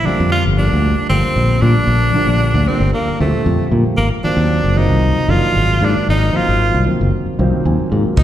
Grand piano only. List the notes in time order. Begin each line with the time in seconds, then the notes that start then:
0.04 D3 F3 G3 A#3 C4
0.58 D3 F3 G3 A#3 D4
1.09 D3 F3 G3 A#3 C4
1.62 D3 F3 G3 A#3 D4
2.14 D3 F3 G3 A#3 D4
2.68 D3 F3 G3 A#3 D4
3.19 A#2 D3 F3 G3 C4
3.72 D3 F3 G3 A#3 C4
4.24 D#3 F3 F#3 A#3 C4
4.75 D#3 F3 F#3 A#3 C4
5.27 D#3 F3 F#3 A#3 D4
5.79 D#3 F3 F#3 A#3 D4
6.33 D#3 F3 F#3 A#3 C4
6.85 D#3 F3 F#3 A#3 C4
7.39 D#3 F3 F#3 A#3 C4 C5
7.66 G#5
7.90 D#3 F3 F#3 A#3 C4